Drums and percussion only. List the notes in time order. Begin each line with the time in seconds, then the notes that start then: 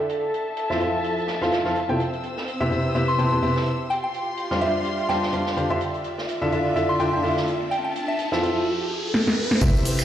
0.09 closed hi-hat
0.23 shaker
0.34 closed hi-hat, shaker
0.47 shaker
0.57 closed hi-hat, shaker
0.71 snare
0.80 closed hi-hat
1.04 closed hi-hat
1.18 closed hi-hat
1.28 snare, closed hi-hat
1.42 snare
1.52 snare, closed hi-hat
1.65 snare
1.76 closed hi-hat
2.00 closed hi-hat
2.13 closed hi-hat
2.23 closed hi-hat, shaker
2.37 snare
2.48 closed hi-hat, shaker
2.72 closed hi-hat
2.96 closed hi-hat
3.19 closed hi-hat
3.42 open hi-hat
3.56 snare
3.66 closed hi-hat, shaker
3.80 shaker
3.90 closed hi-hat
4.14 closed hi-hat, shaker
4.28 shaker
4.37 closed hi-hat, shaker
4.51 snare
4.61 closed hi-hat
4.84 closed hi-hat
4.99 closed hi-hat
5.09 snare, closed hi-hat
5.23 snare
5.32 closed hi-hat
5.46 snare
5.57 closed hi-hat, shaker
5.81 closed hi-hat
5.94 closed hi-hat
6.04 closed hi-hat, shaker
6.18 snare
6.29 closed hi-hat
6.52 closed hi-hat, shaker
6.66 shaker
6.76 closed hi-hat
7.00 closed hi-hat, shaker
7.14 shaker
7.24 open hi-hat
7.37 snare
7.47 closed hi-hat, shaker
7.61 shaker
7.71 closed hi-hat, shaker
7.96 closed hi-hat, shaker
8.09 shaker
8.19 closed hi-hat, shaker
8.32 snare
8.43 closed hi-hat, shaker
8.56 shaker
9.14 snare
9.27 snare
9.51 snare
9.61 kick, closed hi-hat, crash, tambourine, shaker
9.75 closed hi-hat, tambourine, shaker
9.85 closed hi-hat, open hi-hat, shaker
9.99 finger snap, snare, tambourine, shaker